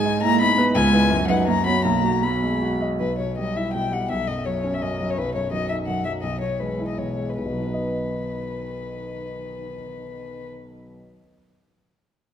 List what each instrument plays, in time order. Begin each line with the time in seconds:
Already playing: grand piano G#2 G#4, cello G#3, violin G#5
0.06 grand piano D#4
0.23 cello A#3, grand piano E4, violin A#5
0.40 cello B3, grand piano D#4, violin B5
0.58 grand piano B4
0.75 grand piano C#2, cello G#3, violin G#5
0.93 grand piano E4 B4
1.10 grand piano F#2
1.27 cello F#3, grand piano D#4 B4, violin F#5
1.47 grand piano F#2, cello A#3, violin A#5
1.66 cello B3, grand piano F#4 C#5, violin B5
1.85 grand piano B1, cello A#3, violin A#5
2.04 grand piano F#4
2.23 grand piano F#3, cello B3, violin B5
2.43 grand piano G#3
2.62 grand piano F#4
2.81 grand piano D#5
3.00 grand piano B1, violin B4
3.19 grand piano B2, violin C#5
3.37 cello G3, grand piano G3, violin D#5
3.56 grand piano E4, violin E5
3.74 grand piano B2, cello G3, violin G5
3.92 grand piano G3, violin F#5
4.10 grand piano B1, violin E5
4.27 grand piano F#2, violin D#5
4.46 grand piano F#3, cello F#3, violin C#5
4.64 grand piano C#4
4.74 violin E5
4.81 grand piano F#2, cello F#3, violin D#5
5.00 grand piano F#3
5.10 violin C#5
5.18 grand piano B1, violin B4
5.34 grand piano F#2, violin C#5
5.51 cello D#3, grand piano F#3, violin D#5
5.69 grand piano D#4, violin E5
5.87 grand piano F#2, cello D#3, violin F#5
6.05 grand piano F#3, violin E5
6.22 grand piano B1, violin D#5
6.41 grand piano B2, violin C#5
6.60 cello E3, grand piano G#3, violin B4
6.79 grand piano E4
6.88 violin D#5
6.98 grand piano B2, cello E3, violin C#5
7.18 grand piano G#3
7.30 violin B4
7.38 grand piano B1, cello D#3, violin B4
7.45 grand piano B2
7.53 grand piano F#3
7.59 grand piano D#4
7.67 grand piano B4
7.73 grand piano D#5